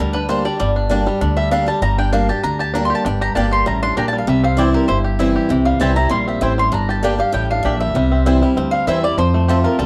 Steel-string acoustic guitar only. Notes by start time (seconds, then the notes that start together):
0.00 D3
0.29 G3 A#3 D4 G4
0.45 D4 G4
0.60 G2
0.89 G3 A#3 D4 G4
1.06 D4 G4
1.21 D3
1.51 G3 A#3 D4 G4
1.66 D4 G4
1.82 G2
2.13 G3 A#3 D4 G4
2.29 D4 G4
2.44 D3
2.75 G3 A#3 D4 G4
3.06 G2
3.36 G3 A#3 D4 G4
3.66 A2
3.97 A#2
4.27 C3
4.57 E3 G3 C4 E4
4.89 G2
5.19 E3 G3 C4 E4
5.50 C3
5.80 E3 G3 C4 E4
5.96 C4 E4
6.10 A#2
6.41 A2
6.72 G2
7.03 G3 A#3 D4 G4
7.19 D4 G4
7.32 A2
7.63 A#2
7.95 C3
8.26 E3 G3 C4 E4
8.43 C4 E4
8.57 G2
8.87 E3 G3 C4 E4
9.05 C4 E4
9.18 F2
9.49 F3 A3 C4 F4
9.79 C3